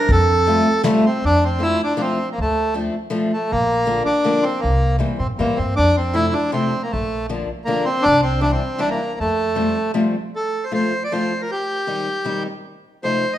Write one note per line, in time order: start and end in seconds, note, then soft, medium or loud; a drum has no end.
0.00 0.10 D4 medium
0.00 0.11 A#4 medium
0.09 0.58 F2 medium
0.09 0.82 C4 medium
0.09 0.82 A4 medium
0.09 kick medium
0.09 closed hi-hat soft
0.47 0.66 G3 soft
0.47 0.66 A3 soft
0.47 0.66 C4 soft
0.47 0.67 F4 medium
0.47 closed hi-hat soft
0.83 1.04 G3 medium
0.83 1.04 A3 medium
0.83 1.05 A3 medium
0.83 1.04 C4 medium
0.83 1.04 F4 medium
0.83 snare medium
0.83 closed hi-hat soft
1.06 1.25 C4 medium
1.24 1.73 F2 medium
1.24 1.44 D4 medium
1.44 1.63 C4 medium
1.59 1.79 F3 soft
1.59 1.79 A3 soft
1.59 1.80 C4 soft
1.59 1.82 E4 medium
1.59 1.79 F4 soft
1.84 2.02 D4 medium
1.97 2.17 F3 medium
1.97 2.17 A3 soft
1.97 2.18 C4 medium
1.97 2.18 F4 soft
2.01 2.29 C4 medium
2.32 2.39 A#3 medium
2.38 2.87 D2 medium
2.38 2.74 A3 medium
2.74 2.94 F3 soft
2.74 2.94 A3 soft
2.74 2.93 C4 soft
2.74 2.94 D4 medium
3.10 3.30 F3 medium
3.10 3.30 A3 soft
3.10 3.31 C4 medium
3.10 3.31 D4 medium
3.33 3.51 A3 medium
3.51 4.00 A#1 medium
3.51 4.03 A#3 medium
3.86 4.06 D3 medium
3.86 4.06 F3 soft
3.86 4.06 A#3 soft
3.86 4.06 D4 soft
4.06 4.45 D4 medium
4.24 4.44 D3 medium
4.24 4.44 F3 medium
4.24 4.44 A#3 medium
4.24 4.44 D4 medium
4.42 4.60 C4 medium
4.60 5.00 C2 medium
4.60 4.96 A#3 medium
4.99 5.19 E3 soft
4.99 5.19 G3 soft
4.99 5.20 A#3 soft
4.99 5.19 C4 soft
5.19 5.37 A#2 medium
5.19 5.27 C4 medium
5.39 5.56 A2 medium
5.39 5.58 E3 soft
5.39 5.58 G3 soft
5.39 5.58 A#3 medium
5.39 5.58 A#3 soft
5.39 5.58 C4 medium
5.56 5.75 G2 medium
5.56 5.74 C4 medium
5.76 6.27 F2 medium
5.76 5.96 D4 loud
5.97 6.16 C4 medium
6.13 6.34 C3 soft
6.13 6.33 F3 soft
6.13 6.33 A3 soft
6.13 6.34 C4 soft
6.13 6.34 E4 medium
6.33 6.51 D4 medium
6.52 6.72 C3 medium
6.52 6.72 F3 soft
6.52 6.72 A3 medium
6.52 6.82 C4 medium
6.52 6.73 C4 medium
6.83 6.92 A#3 medium
6.92 7.42 A#1 medium
6.92 7.26 A3 medium
7.29 7.48 D3 soft
7.29 7.48 F3 soft
7.29 7.48 A#3 medium
7.29 7.49 D4 soft
7.65 7.86 D3 soft
7.65 7.86 F3 soft
7.65 7.85 A#3 medium
7.65 7.86 A#3 soft
7.65 7.86 D4 medium
7.85 8.04 C4 medium
8.02 8.54 C2 medium
8.02 8.21 D4 loud
8.23 8.40 C4 medium
8.41 8.60 E3 soft
8.41 8.61 G3 soft
8.41 8.60 C4 soft
8.41 8.52 D4 medium
8.41 8.61 D4 soft
8.52 8.81 C4 medium
8.79 8.99 E3 medium
8.79 8.98 G3 soft
8.79 8.99 C4 soft
8.79 8.90 D4 medium
8.79 8.99 D4 medium
8.90 9.19 A#3 medium
9.20 9.69 F2 medium
9.20 9.92 A3 medium
9.55 9.75 F3 soft
9.55 9.76 G3 soft
9.55 9.75 A3 soft
9.55 9.76 C4 medium
9.94 10.14 F3 medium
9.94 10.14 G3 medium
9.94 10.14 A3 medium
9.94 10.14 C4 medium
10.36 10.65 A4 medium
10.64 10.73 C5 medium
10.71 10.92 F3 soft
10.71 10.91 A3 soft
10.71 10.92 C4 soft
10.71 10.92 F4 soft
10.71 11.03 C5 medium
11.04 11.13 D5 medium
11.12 11.31 F3 medium
11.12 11.31 A3 soft
11.12 11.32 C4 soft
11.12 11.32 F4 medium
11.12 11.42 C5 medium
11.42 11.51 A#4 soft
11.51 12.43 G4 medium
11.87 12.08 D#3 soft
11.87 12.08 G3 soft
11.87 12.07 C4 soft
11.87 12.07 D#4 soft
12.25 12.45 D#3 medium
12.25 12.46 G3 soft
12.25 12.46 C4 medium
12.25 12.46 D#4 medium
13.03 13.23 C3 soft
13.03 13.23 F3 soft
13.03 13.23 A3 soft
13.03 13.23 C4 soft
13.03 13.23 D#4 soft
13.03 13.34 C5 medium
13.33 13.38 D#5 medium